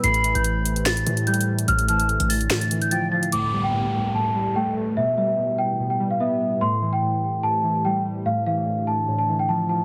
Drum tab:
HH |x--x--x--x--x-----x--x--x--x--x--x--x-x-x----x--|x--x--x--x--x--x--o--x--x--x--x--x--x--------x--|x-----------------------------------------------|------------------------------------------------|
SD |------------------------o-----------------------|------------------------o-----------------------|------------------------------------------------|------------------------------------------------|

HH |------------------------------------------------|------------------------------------------------|
SD |------------------------------------------------|------------------------------------------------|